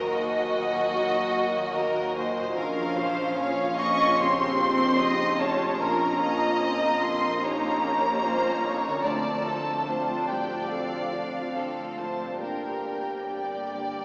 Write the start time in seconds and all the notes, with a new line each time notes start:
Already playing: D#2 A#2 D#3 F#3 A#3 F#4 A#4 D#5
0.14 A#3 F#4
0.56 A#2
0.96 A#3
1.37 F#4
1.76 A#3 A#4
2.17 A#2 C5
2.41 A#2
2.50 F4
2.57 A#1 C#3 F3 C#4 F4 A#4 F5
2.98 F4 C5
3.38 C#4 C#5
3.78 F2 A#3 C#4 D#5 C#6
4.18 C#3 C4 G4 C#5 C6
4.59 F4 C5
4.99 C#3 D#4 D#5
5.39 F2 A3 C#4 C#5 A5
5.79 A#1 F3 A#3 F4 A#4 A#5
6.20 F4 D#5
6.61 C4 C#4
7.01 F2 A#3 C4 C6
7.42 A#3 C#4 D#4 G4 C#5 A#5
7.83 C#4 F4
8.23 C2 C#4 F4 C5
8.63 F2 D#4 C#5
8.87 D3
8.92 C4
8.96 F4
9.00 C4 F4 D5 A5
9.04 D2 F3 A3 C4 A5
9.46 F4 A4
9.87 C4 D4 F4 C5
10.28 A2 G3 G4 D5 G5
10.68 F3 C4 D4 A4 F5
11.11 F4
11.54 C4 A4
11.98 A2 A3 C5 A5
12.24 G2
12.29 A#3
12.33 D4
12.38 D3 A#3 G4
12.42 G1 G2 G3 A#4 G5
12.86 D4
13.30 A#3 D5
13.74 D3